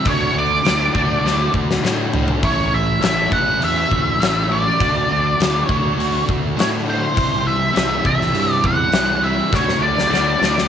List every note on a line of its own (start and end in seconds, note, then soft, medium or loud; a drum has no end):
0.05 0.29 D2 medium
0.05 0.63 D3 medium
0.05 0.65 A3 medium
0.05 0.64 D4 medium
0.05 0.65 F#4 medium
0.05 0.34 C#5 medium
0.05 kick medium
0.05 open hi-hat soft
0.34 0.59 D2 medium
0.34 1.51 D5 medium
0.64 0.89 D2 medium
0.64 0.93 D3 medium
0.64 0.94 A3 medium
0.64 0.94 D4 medium
0.64 0.95 F#4 medium
0.64 snare loud
0.64 open hi-hat soft
0.94 1.18 D2 medium
0.94 1.23 D3 medium
0.94 1.25 A3 medium
0.94 1.25 D4 medium
0.94 1.25 F#4 medium
0.94 kick medium
1.23 1.47 D2 medium
1.23 1.83 D3 medium
1.23 1.84 A3 loud
1.23 1.83 D4 medium
1.23 1.85 F#4 loud
1.23 snare soft
1.54 1.78 D2 medium
1.54 kick medium
1.71 snare medium
1.84 2.31 A2 medium
1.84 2.12 D3 medium
1.84 2.14 A3 medium
1.84 2.13 D4 medium
1.84 2.14 F#4 medium
1.84 snare medium
2.13 2.41 D3 medium
2.13 2.42 A3 medium
2.13 2.42 D4 medium
2.13 2.42 F#4 medium
2.13 floor tom medium
2.28 floor tom medium
2.42 2.66 A1 medium
2.42 2.99 A2 medium
2.42 2.99 E3 medium
2.42 3.01 A3 medium
2.42 3.00 C#4 medium
2.42 3.00 E4 medium
2.42 2.74 C#5 medium
2.42 kick medium
2.42 open hi-hat soft
2.74 2.97 A1 medium
2.74 3.01 E5 medium
3.01 3.26 A1 medium
3.01 3.29 A2 medium
3.01 3.29 E3 medium
3.01 3.31 A3 medium
3.01 3.30 C#4 medium
3.01 3.31 E4 medium
3.01 snare loud
3.01 open hi-hat soft
3.05 3.33 E5 medium
3.31 3.56 A1 medium
3.31 3.59 A2 medium
3.31 3.59 E3 medium
3.31 3.60 A3 medium
3.31 3.60 C#4 medium
3.31 3.60 E4 medium
3.31 3.60 F#5 medium
3.31 kick medium
3.60 3.86 E2 medium
3.60 4.17 A2 medium
3.60 4.18 E3 medium
3.60 4.19 A3 medium
3.60 4.19 C#4 medium
3.60 4.19 E4 medium
3.60 4.47 E5 medium
3.60 open hi-hat soft
3.91 4.15 D2 medium
3.91 kick medium
4.19 4.68 A1 medium
4.19 4.48 A2 medium
4.19 4.49 E3 medium
4.19 4.49 A3 medium
4.19 4.50 C#4 medium
4.19 4.50 E4 medium
4.19 open hi-hat soft
4.23 snare loud
4.49 4.78 A2 medium
4.49 4.78 E3 medium
4.49 4.78 A3 medium
4.49 4.78 C#4 medium
4.49 4.78 E4 medium
4.49 5.63 D5 medium
4.80 5.03 D2 medium
4.80 5.39 D3 medium
4.80 5.39 A3 medium
4.80 5.40 D4 medium
4.80 5.40 F#4 medium
4.80 kick loud
4.80 open hi-hat soft
5.11 5.34 D2 medium
5.40 5.63 D2 medium
5.40 5.68 D3 medium
5.40 5.69 A3 medium
5.40 5.70 D4 medium
5.40 5.69 F#4 medium
5.40 snare loud
5.40 open hi-hat medium
5.63 6.25 C#5 medium
5.69 5.92 D2 medium
5.69 5.96 D3 medium
5.69 5.96 A3 medium
5.69 5.97 D4 medium
5.69 5.97 F#4 medium
5.69 kick medium
5.97 6.21 D2 medium
5.97 6.56 D3 medium
5.97 6.56 A3 medium
5.97 6.56 D4 medium
5.97 6.57 F#4 loud
5.97 open hi-hat soft
6.29 6.52 D2 medium
6.29 kick medium
6.57 7.05 A2 medium
6.57 6.84 D3 medium
6.57 6.84 A3 medium
6.57 6.85 D4 medium
6.57 6.85 F#4 medium
6.57 6.68 C#5 medium
6.57 snare loud
6.57 open hi-hat soft
6.85 7.14 D3 medium
6.85 7.14 A3 medium
6.85 7.14 D4 medium
6.85 7.14 F#4 medium
6.90 7.49 C5 medium
7.14 7.40 C2 medium
7.14 7.72 C3 medium
7.14 7.72 E3 medium
7.14 7.72 G3 medium
7.14 7.72 C4 loud
7.14 7.73 E4 medium
7.14 kick loud
7.14 open hi-hat soft
7.46 7.69 C2 medium
7.46 8.05 E5 medium
7.73 7.99 C2 medium
7.73 8.02 C3 medium
7.73 8.03 E3 medium
7.73 8.03 G3 medium
7.73 8.03 C4 medium
7.73 8.04 E4 medium
7.73 open hi-hat soft
7.77 snare loud
8.04 8.29 C2 medium
8.04 8.31 C3 medium
8.04 8.31 E3 medium
8.04 8.32 G3 medium
8.04 8.33 C4 medium
8.04 8.33 E4 medium
8.04 8.54 E5 medium
8.04 kick medium
8.21 snare soft
8.32 8.58 G2 loud
8.32 8.91 C3 loud
8.32 8.92 E3 loud
8.32 8.92 G3 loud
8.32 8.92 C4 medium
8.32 8.92 E4 loud
8.32 open hi-hat soft
8.54 8.66 D5 medium
8.64 8.88 E2 medium
8.64 9.20 F#5 loud
8.64 kick medium
8.92 9.40 C2 medium
8.92 9.21 C3 medium
8.92 9.22 E3 medium
8.92 9.22 G3 medium
8.92 9.23 C4 medium
8.92 9.22 E4 medium
8.92 snare loud
8.92 open hi-hat soft
9.23 9.51 C3 medium
9.23 9.50 E3 medium
9.23 9.51 G3 medium
9.23 9.51 C4 medium
9.23 9.51 E4 medium
9.23 9.54 E5 medium
9.51 9.76 D2 medium
9.51 10.09 D3 medium
9.51 10.09 A3 medium
9.51 10.09 D4 medium
9.51 10.10 F#4 medium
9.51 9.83 C#5 medium
9.51 kick loud
9.51 snare soft
9.69 snare soft
9.80 10.05 D2 medium
9.80 10.68 D5 medium
9.98 snare medium
10.10 10.35 D2 medium
10.10 10.39 D3 medium
10.10 10.40 A3 medium
10.10 10.40 D4 medium
10.10 10.41 F#4 medium
10.10 snare medium
10.40 10.65 D2 medium
10.40 10.68 D3 medium
10.40 10.68 A3 medium
10.40 10.68 D4 medium
10.40 10.68 F#4 medium
10.40 snare medium
10.58 snare medium